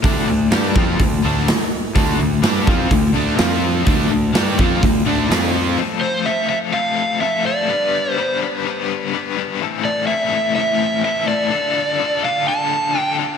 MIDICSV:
0, 0, Header, 1, 5, 480
1, 0, Start_track
1, 0, Tempo, 478088
1, 41, Time_signature, 4, 2, 24, 8
1, 13427, End_track
2, 0, Start_track
2, 0, Title_t, "Electric slide guitar"
2, 0, Program_c, 0, 29
2, 6034, Note_on_c, 0, 72, 94
2, 6279, Note_on_c, 0, 76, 98
2, 6289, Note_off_c, 0, 72, 0
2, 6506, Note_off_c, 0, 76, 0
2, 6518, Note_on_c, 0, 76, 107
2, 6584, Note_off_c, 0, 76, 0
2, 6761, Note_on_c, 0, 77, 116
2, 7233, Note_off_c, 0, 77, 0
2, 7237, Note_on_c, 0, 76, 100
2, 7490, Note_off_c, 0, 76, 0
2, 7496, Note_on_c, 0, 74, 90
2, 8139, Note_off_c, 0, 74, 0
2, 8139, Note_on_c, 0, 72, 90
2, 8411, Note_off_c, 0, 72, 0
2, 9888, Note_on_c, 0, 74, 85
2, 10109, Note_off_c, 0, 74, 0
2, 10113, Note_on_c, 0, 76, 86
2, 10584, Note_off_c, 0, 76, 0
2, 10596, Note_on_c, 0, 76, 101
2, 11078, Note_off_c, 0, 76, 0
2, 11090, Note_on_c, 0, 76, 99
2, 11319, Note_off_c, 0, 76, 0
2, 11324, Note_on_c, 0, 74, 98
2, 12293, Note_off_c, 0, 74, 0
2, 12297, Note_on_c, 0, 77, 103
2, 12532, Note_off_c, 0, 77, 0
2, 12536, Note_on_c, 0, 81, 107
2, 13038, Note_off_c, 0, 81, 0
2, 13038, Note_on_c, 0, 79, 107
2, 13210, Note_off_c, 0, 79, 0
2, 13427, End_track
3, 0, Start_track
3, 0, Title_t, "Overdriven electric guitar"
3, 0, Program_c, 1, 29
3, 28, Note_on_c, 1, 50, 95
3, 36, Note_on_c, 1, 57, 96
3, 36, Note_on_c, 1, 62, 107
3, 261, Note_off_c, 1, 50, 0
3, 264, Note_off_c, 1, 57, 0
3, 272, Note_off_c, 1, 62, 0
3, 273, Note_on_c, 1, 50, 64
3, 276, Note_on_c, 1, 57, 72
3, 469, Note_off_c, 1, 50, 0
3, 471, Note_off_c, 1, 57, 0
3, 530, Note_on_c, 1, 62, 86
3, 535, Note_on_c, 1, 55, 89
3, 542, Note_on_c, 1, 67, 94
3, 759, Note_off_c, 1, 62, 0
3, 761, Note_on_c, 1, 53, 88
3, 762, Note_off_c, 1, 55, 0
3, 765, Note_off_c, 1, 67, 0
3, 773, Note_on_c, 1, 60, 85
3, 778, Note_on_c, 1, 65, 92
3, 995, Note_off_c, 1, 53, 0
3, 1001, Note_off_c, 1, 60, 0
3, 1004, Note_off_c, 1, 65, 0
3, 1015, Note_on_c, 1, 50, 68
3, 1019, Note_on_c, 1, 57, 76
3, 1201, Note_off_c, 1, 50, 0
3, 1203, Note_off_c, 1, 57, 0
3, 1254, Note_on_c, 1, 50, 92
3, 1264, Note_on_c, 1, 62, 101
3, 1265, Note_on_c, 1, 57, 103
3, 1482, Note_off_c, 1, 50, 0
3, 1487, Note_off_c, 1, 62, 0
3, 1488, Note_off_c, 1, 57, 0
3, 1960, Note_on_c, 1, 50, 91
3, 1968, Note_on_c, 1, 57, 112
3, 1975, Note_on_c, 1, 62, 112
3, 2192, Note_off_c, 1, 50, 0
3, 2192, Note_off_c, 1, 57, 0
3, 2203, Note_off_c, 1, 62, 0
3, 2204, Note_on_c, 1, 50, 67
3, 2204, Note_on_c, 1, 57, 70
3, 2397, Note_off_c, 1, 50, 0
3, 2397, Note_off_c, 1, 57, 0
3, 2431, Note_on_c, 1, 55, 92
3, 2441, Note_on_c, 1, 62, 92
3, 2447, Note_on_c, 1, 67, 88
3, 2658, Note_off_c, 1, 55, 0
3, 2659, Note_on_c, 1, 53, 91
3, 2662, Note_on_c, 1, 60, 89
3, 2669, Note_off_c, 1, 62, 0
3, 2673, Note_on_c, 1, 65, 91
3, 2680, Note_off_c, 1, 67, 0
3, 2905, Note_off_c, 1, 60, 0
3, 2906, Note_off_c, 1, 53, 0
3, 2909, Note_on_c, 1, 57, 76
3, 2911, Note_on_c, 1, 50, 73
3, 2913, Note_off_c, 1, 65, 0
3, 3110, Note_off_c, 1, 57, 0
3, 3111, Note_off_c, 1, 50, 0
3, 3143, Note_on_c, 1, 50, 99
3, 3154, Note_on_c, 1, 57, 106
3, 3160, Note_on_c, 1, 62, 102
3, 3381, Note_off_c, 1, 50, 0
3, 3381, Note_on_c, 1, 53, 97
3, 3385, Note_off_c, 1, 57, 0
3, 3385, Note_on_c, 1, 60, 114
3, 3400, Note_off_c, 1, 62, 0
3, 3400, Note_on_c, 1, 65, 102
3, 3854, Note_off_c, 1, 53, 0
3, 3858, Note_on_c, 1, 50, 100
3, 3863, Note_off_c, 1, 65, 0
3, 3864, Note_off_c, 1, 60, 0
3, 3867, Note_on_c, 1, 62, 121
3, 3869, Note_on_c, 1, 57, 113
3, 4097, Note_off_c, 1, 50, 0
3, 4099, Note_off_c, 1, 57, 0
3, 4109, Note_on_c, 1, 50, 59
3, 4111, Note_off_c, 1, 62, 0
3, 4111, Note_on_c, 1, 57, 72
3, 4311, Note_off_c, 1, 50, 0
3, 4312, Note_off_c, 1, 57, 0
3, 4345, Note_on_c, 1, 55, 83
3, 4352, Note_on_c, 1, 62, 104
3, 4363, Note_on_c, 1, 67, 108
3, 4583, Note_on_c, 1, 53, 83
3, 4589, Note_off_c, 1, 55, 0
3, 4593, Note_off_c, 1, 62, 0
3, 4593, Note_on_c, 1, 60, 90
3, 4599, Note_off_c, 1, 67, 0
3, 4599, Note_on_c, 1, 65, 95
3, 4829, Note_off_c, 1, 53, 0
3, 4832, Note_off_c, 1, 60, 0
3, 4833, Note_on_c, 1, 50, 67
3, 4836, Note_on_c, 1, 57, 69
3, 4837, Note_off_c, 1, 65, 0
3, 5033, Note_off_c, 1, 50, 0
3, 5035, Note_off_c, 1, 57, 0
3, 5070, Note_on_c, 1, 50, 90
3, 5079, Note_on_c, 1, 57, 94
3, 5089, Note_on_c, 1, 62, 113
3, 5310, Note_off_c, 1, 50, 0
3, 5314, Note_on_c, 1, 53, 94
3, 5315, Note_off_c, 1, 57, 0
3, 5319, Note_on_c, 1, 60, 116
3, 5322, Note_off_c, 1, 62, 0
3, 5329, Note_on_c, 1, 65, 114
3, 5787, Note_off_c, 1, 53, 0
3, 5797, Note_off_c, 1, 60, 0
3, 5799, Note_on_c, 1, 53, 93
3, 5802, Note_off_c, 1, 65, 0
3, 5806, Note_on_c, 1, 57, 104
3, 5810, Note_on_c, 1, 60, 100
3, 5817, Note_on_c, 1, 69, 116
3, 5818, Note_on_c, 1, 65, 109
3, 6263, Note_off_c, 1, 53, 0
3, 6264, Note_off_c, 1, 57, 0
3, 6274, Note_off_c, 1, 65, 0
3, 6275, Note_on_c, 1, 53, 79
3, 6276, Note_on_c, 1, 57, 85
3, 6277, Note_off_c, 1, 60, 0
3, 6283, Note_off_c, 1, 69, 0
3, 6286, Note_on_c, 1, 65, 88
3, 6289, Note_on_c, 1, 60, 82
3, 6295, Note_on_c, 1, 69, 89
3, 6492, Note_off_c, 1, 53, 0
3, 6497, Note_off_c, 1, 57, 0
3, 6504, Note_on_c, 1, 53, 94
3, 6507, Note_off_c, 1, 60, 0
3, 6509, Note_on_c, 1, 57, 86
3, 6510, Note_off_c, 1, 65, 0
3, 6515, Note_off_c, 1, 69, 0
3, 6519, Note_on_c, 1, 60, 81
3, 6522, Note_on_c, 1, 65, 93
3, 6527, Note_on_c, 1, 69, 92
3, 6741, Note_off_c, 1, 57, 0
3, 6743, Note_off_c, 1, 53, 0
3, 6746, Note_off_c, 1, 60, 0
3, 6751, Note_off_c, 1, 65, 0
3, 6753, Note_on_c, 1, 57, 92
3, 6755, Note_on_c, 1, 53, 93
3, 6758, Note_on_c, 1, 60, 100
3, 6762, Note_off_c, 1, 69, 0
3, 6763, Note_on_c, 1, 65, 105
3, 6774, Note_on_c, 1, 69, 115
3, 7221, Note_off_c, 1, 53, 0
3, 7228, Note_off_c, 1, 57, 0
3, 7229, Note_off_c, 1, 60, 0
3, 7233, Note_on_c, 1, 53, 94
3, 7239, Note_off_c, 1, 65, 0
3, 7240, Note_on_c, 1, 57, 91
3, 7241, Note_on_c, 1, 60, 94
3, 7243, Note_off_c, 1, 69, 0
3, 7251, Note_on_c, 1, 65, 109
3, 7255, Note_on_c, 1, 69, 103
3, 7456, Note_off_c, 1, 53, 0
3, 7465, Note_off_c, 1, 57, 0
3, 7468, Note_off_c, 1, 60, 0
3, 7468, Note_on_c, 1, 53, 88
3, 7477, Note_off_c, 1, 69, 0
3, 7477, Note_on_c, 1, 57, 96
3, 7480, Note_off_c, 1, 65, 0
3, 7480, Note_on_c, 1, 60, 85
3, 7489, Note_on_c, 1, 69, 95
3, 7492, Note_on_c, 1, 65, 92
3, 7703, Note_off_c, 1, 53, 0
3, 7708, Note_off_c, 1, 57, 0
3, 7710, Note_off_c, 1, 60, 0
3, 7714, Note_off_c, 1, 69, 0
3, 7715, Note_off_c, 1, 65, 0
3, 7717, Note_on_c, 1, 55, 102
3, 7718, Note_on_c, 1, 62, 108
3, 7726, Note_on_c, 1, 59, 109
3, 7730, Note_on_c, 1, 71, 117
3, 8190, Note_off_c, 1, 55, 0
3, 8195, Note_off_c, 1, 62, 0
3, 8202, Note_off_c, 1, 59, 0
3, 8202, Note_on_c, 1, 55, 81
3, 8207, Note_off_c, 1, 71, 0
3, 8207, Note_on_c, 1, 62, 88
3, 8214, Note_on_c, 1, 59, 89
3, 8219, Note_on_c, 1, 71, 93
3, 8437, Note_off_c, 1, 55, 0
3, 8448, Note_off_c, 1, 62, 0
3, 8449, Note_on_c, 1, 55, 85
3, 8450, Note_off_c, 1, 59, 0
3, 8453, Note_off_c, 1, 71, 0
3, 8460, Note_on_c, 1, 62, 85
3, 8462, Note_on_c, 1, 59, 93
3, 8465, Note_on_c, 1, 71, 99
3, 8678, Note_off_c, 1, 55, 0
3, 8689, Note_off_c, 1, 62, 0
3, 8690, Note_on_c, 1, 55, 97
3, 8695, Note_off_c, 1, 59, 0
3, 8699, Note_off_c, 1, 71, 0
3, 8701, Note_on_c, 1, 62, 106
3, 8707, Note_on_c, 1, 59, 101
3, 8711, Note_on_c, 1, 71, 118
3, 9163, Note_off_c, 1, 55, 0
3, 9167, Note_off_c, 1, 62, 0
3, 9175, Note_off_c, 1, 59, 0
3, 9175, Note_on_c, 1, 55, 92
3, 9177, Note_off_c, 1, 71, 0
3, 9179, Note_on_c, 1, 62, 105
3, 9187, Note_on_c, 1, 59, 98
3, 9189, Note_on_c, 1, 71, 106
3, 9395, Note_off_c, 1, 55, 0
3, 9397, Note_off_c, 1, 62, 0
3, 9407, Note_on_c, 1, 55, 93
3, 9408, Note_off_c, 1, 59, 0
3, 9409, Note_on_c, 1, 62, 90
3, 9412, Note_off_c, 1, 71, 0
3, 9420, Note_on_c, 1, 59, 101
3, 9424, Note_on_c, 1, 71, 100
3, 9632, Note_off_c, 1, 55, 0
3, 9633, Note_off_c, 1, 62, 0
3, 9639, Note_off_c, 1, 59, 0
3, 9641, Note_off_c, 1, 71, 0
3, 9648, Note_on_c, 1, 45, 100
3, 9648, Note_on_c, 1, 52, 107
3, 9655, Note_on_c, 1, 57, 116
3, 9659, Note_on_c, 1, 60, 107
3, 9669, Note_on_c, 1, 64, 114
3, 9669, Note_on_c, 1, 69, 121
3, 10103, Note_off_c, 1, 45, 0
3, 10110, Note_off_c, 1, 52, 0
3, 10113, Note_off_c, 1, 60, 0
3, 10115, Note_on_c, 1, 45, 91
3, 10122, Note_off_c, 1, 57, 0
3, 10122, Note_on_c, 1, 52, 81
3, 10125, Note_off_c, 1, 64, 0
3, 10125, Note_on_c, 1, 60, 95
3, 10126, Note_on_c, 1, 57, 93
3, 10137, Note_on_c, 1, 64, 95
3, 10138, Note_off_c, 1, 69, 0
3, 10142, Note_on_c, 1, 69, 97
3, 10352, Note_off_c, 1, 45, 0
3, 10354, Note_off_c, 1, 52, 0
3, 10364, Note_on_c, 1, 45, 90
3, 10366, Note_on_c, 1, 52, 82
3, 10369, Note_off_c, 1, 57, 0
3, 10370, Note_off_c, 1, 60, 0
3, 10373, Note_on_c, 1, 57, 93
3, 10375, Note_off_c, 1, 64, 0
3, 10382, Note_on_c, 1, 60, 92
3, 10385, Note_off_c, 1, 69, 0
3, 10387, Note_on_c, 1, 64, 97
3, 10389, Note_on_c, 1, 69, 100
3, 10596, Note_off_c, 1, 45, 0
3, 10605, Note_off_c, 1, 52, 0
3, 10608, Note_on_c, 1, 45, 106
3, 10617, Note_on_c, 1, 52, 111
3, 10619, Note_off_c, 1, 60, 0
3, 10622, Note_off_c, 1, 57, 0
3, 10623, Note_off_c, 1, 64, 0
3, 10626, Note_on_c, 1, 57, 104
3, 10630, Note_off_c, 1, 69, 0
3, 10631, Note_on_c, 1, 60, 106
3, 10634, Note_on_c, 1, 69, 120
3, 10635, Note_on_c, 1, 64, 108
3, 11064, Note_off_c, 1, 45, 0
3, 11069, Note_off_c, 1, 52, 0
3, 11076, Note_on_c, 1, 45, 95
3, 11080, Note_off_c, 1, 57, 0
3, 11081, Note_on_c, 1, 52, 99
3, 11084, Note_on_c, 1, 57, 106
3, 11085, Note_off_c, 1, 60, 0
3, 11090, Note_off_c, 1, 64, 0
3, 11097, Note_on_c, 1, 60, 99
3, 11102, Note_off_c, 1, 69, 0
3, 11102, Note_on_c, 1, 64, 100
3, 11106, Note_on_c, 1, 69, 114
3, 11296, Note_off_c, 1, 45, 0
3, 11298, Note_off_c, 1, 52, 0
3, 11308, Note_on_c, 1, 45, 97
3, 11310, Note_on_c, 1, 52, 92
3, 11313, Note_off_c, 1, 64, 0
3, 11318, Note_off_c, 1, 57, 0
3, 11319, Note_off_c, 1, 60, 0
3, 11322, Note_on_c, 1, 57, 103
3, 11325, Note_on_c, 1, 64, 91
3, 11329, Note_off_c, 1, 69, 0
3, 11331, Note_on_c, 1, 60, 96
3, 11333, Note_on_c, 1, 69, 109
3, 11538, Note_off_c, 1, 57, 0
3, 11542, Note_off_c, 1, 45, 0
3, 11542, Note_on_c, 1, 50, 96
3, 11543, Note_off_c, 1, 52, 0
3, 11546, Note_off_c, 1, 60, 0
3, 11550, Note_on_c, 1, 62, 107
3, 11551, Note_off_c, 1, 64, 0
3, 11557, Note_on_c, 1, 65, 113
3, 11559, Note_off_c, 1, 69, 0
3, 11563, Note_on_c, 1, 69, 118
3, 12018, Note_off_c, 1, 50, 0
3, 12031, Note_on_c, 1, 50, 85
3, 12033, Note_off_c, 1, 62, 0
3, 12041, Note_off_c, 1, 65, 0
3, 12045, Note_on_c, 1, 62, 78
3, 12045, Note_on_c, 1, 65, 90
3, 12053, Note_off_c, 1, 69, 0
3, 12057, Note_on_c, 1, 69, 102
3, 12273, Note_off_c, 1, 50, 0
3, 12279, Note_off_c, 1, 62, 0
3, 12285, Note_on_c, 1, 50, 84
3, 12291, Note_on_c, 1, 62, 84
3, 12296, Note_off_c, 1, 65, 0
3, 12300, Note_on_c, 1, 65, 100
3, 12301, Note_off_c, 1, 69, 0
3, 12305, Note_on_c, 1, 69, 98
3, 12512, Note_off_c, 1, 50, 0
3, 12518, Note_off_c, 1, 62, 0
3, 12520, Note_off_c, 1, 65, 0
3, 12524, Note_on_c, 1, 50, 101
3, 12530, Note_off_c, 1, 69, 0
3, 12530, Note_on_c, 1, 62, 95
3, 12532, Note_on_c, 1, 65, 106
3, 12542, Note_on_c, 1, 69, 108
3, 12987, Note_off_c, 1, 50, 0
3, 12991, Note_off_c, 1, 62, 0
3, 12996, Note_off_c, 1, 65, 0
3, 12999, Note_on_c, 1, 50, 98
3, 13000, Note_off_c, 1, 69, 0
3, 13003, Note_on_c, 1, 62, 90
3, 13008, Note_on_c, 1, 65, 102
3, 13012, Note_on_c, 1, 69, 101
3, 13226, Note_off_c, 1, 50, 0
3, 13233, Note_off_c, 1, 62, 0
3, 13238, Note_on_c, 1, 50, 84
3, 13242, Note_off_c, 1, 65, 0
3, 13242, Note_off_c, 1, 69, 0
3, 13245, Note_on_c, 1, 62, 93
3, 13254, Note_on_c, 1, 65, 101
3, 13254, Note_on_c, 1, 69, 96
3, 13427, Note_off_c, 1, 50, 0
3, 13427, Note_off_c, 1, 62, 0
3, 13427, Note_off_c, 1, 65, 0
3, 13427, Note_off_c, 1, 69, 0
3, 13427, End_track
4, 0, Start_track
4, 0, Title_t, "Fingered electric bass"
4, 0, Program_c, 2, 33
4, 39, Note_on_c, 2, 38, 104
4, 264, Note_off_c, 2, 38, 0
4, 279, Note_on_c, 2, 38, 81
4, 504, Note_off_c, 2, 38, 0
4, 512, Note_on_c, 2, 43, 91
4, 740, Note_off_c, 2, 43, 0
4, 756, Note_on_c, 2, 41, 97
4, 983, Note_off_c, 2, 41, 0
4, 997, Note_on_c, 2, 38, 79
4, 1224, Note_off_c, 2, 38, 0
4, 1248, Note_on_c, 2, 38, 99
4, 1470, Note_off_c, 2, 38, 0
4, 1960, Note_on_c, 2, 38, 102
4, 2186, Note_off_c, 2, 38, 0
4, 2200, Note_on_c, 2, 38, 79
4, 2419, Note_off_c, 2, 38, 0
4, 2425, Note_on_c, 2, 43, 96
4, 2659, Note_off_c, 2, 43, 0
4, 2682, Note_on_c, 2, 41, 96
4, 2908, Note_off_c, 2, 41, 0
4, 2918, Note_on_c, 2, 38, 85
4, 3146, Note_off_c, 2, 38, 0
4, 3170, Note_on_c, 2, 38, 95
4, 3392, Note_off_c, 2, 38, 0
4, 3407, Note_on_c, 2, 41, 102
4, 3854, Note_off_c, 2, 41, 0
4, 3882, Note_on_c, 2, 38, 95
4, 4108, Note_off_c, 2, 38, 0
4, 4123, Note_on_c, 2, 38, 79
4, 4349, Note_off_c, 2, 38, 0
4, 4364, Note_on_c, 2, 43, 91
4, 4589, Note_off_c, 2, 43, 0
4, 4602, Note_on_c, 2, 41, 97
4, 4829, Note_off_c, 2, 41, 0
4, 4847, Note_on_c, 2, 38, 83
4, 5071, Note_off_c, 2, 38, 0
4, 5090, Note_on_c, 2, 38, 91
4, 5313, Note_off_c, 2, 38, 0
4, 5320, Note_on_c, 2, 41, 99
4, 5771, Note_off_c, 2, 41, 0
4, 13427, End_track
5, 0, Start_track
5, 0, Title_t, "Drums"
5, 40, Note_on_c, 9, 36, 110
5, 40, Note_on_c, 9, 46, 60
5, 140, Note_off_c, 9, 36, 0
5, 140, Note_off_c, 9, 46, 0
5, 514, Note_on_c, 9, 46, 67
5, 520, Note_on_c, 9, 38, 117
5, 615, Note_off_c, 9, 46, 0
5, 621, Note_off_c, 9, 38, 0
5, 759, Note_on_c, 9, 36, 110
5, 859, Note_off_c, 9, 36, 0
5, 998, Note_on_c, 9, 46, 63
5, 1000, Note_on_c, 9, 36, 98
5, 1098, Note_off_c, 9, 46, 0
5, 1101, Note_off_c, 9, 36, 0
5, 1484, Note_on_c, 9, 46, 63
5, 1490, Note_on_c, 9, 38, 117
5, 1585, Note_off_c, 9, 46, 0
5, 1591, Note_off_c, 9, 38, 0
5, 1964, Note_on_c, 9, 36, 101
5, 1971, Note_on_c, 9, 46, 64
5, 2064, Note_off_c, 9, 36, 0
5, 2071, Note_off_c, 9, 46, 0
5, 2441, Note_on_c, 9, 46, 65
5, 2447, Note_on_c, 9, 38, 120
5, 2541, Note_off_c, 9, 46, 0
5, 2547, Note_off_c, 9, 38, 0
5, 2684, Note_on_c, 9, 36, 109
5, 2784, Note_off_c, 9, 36, 0
5, 2919, Note_on_c, 9, 46, 61
5, 2921, Note_on_c, 9, 36, 92
5, 3020, Note_off_c, 9, 46, 0
5, 3022, Note_off_c, 9, 36, 0
5, 3395, Note_on_c, 9, 46, 62
5, 3401, Note_on_c, 9, 38, 113
5, 3496, Note_off_c, 9, 46, 0
5, 3502, Note_off_c, 9, 38, 0
5, 3878, Note_on_c, 9, 46, 61
5, 3883, Note_on_c, 9, 36, 107
5, 3979, Note_off_c, 9, 46, 0
5, 3983, Note_off_c, 9, 36, 0
5, 4363, Note_on_c, 9, 46, 64
5, 4369, Note_on_c, 9, 38, 118
5, 4464, Note_off_c, 9, 46, 0
5, 4470, Note_off_c, 9, 38, 0
5, 4607, Note_on_c, 9, 36, 107
5, 4708, Note_off_c, 9, 36, 0
5, 4849, Note_on_c, 9, 36, 96
5, 4854, Note_on_c, 9, 46, 60
5, 4949, Note_off_c, 9, 36, 0
5, 4954, Note_off_c, 9, 46, 0
5, 5333, Note_on_c, 9, 46, 64
5, 5339, Note_on_c, 9, 38, 117
5, 5433, Note_off_c, 9, 46, 0
5, 5439, Note_off_c, 9, 38, 0
5, 13427, End_track
0, 0, End_of_file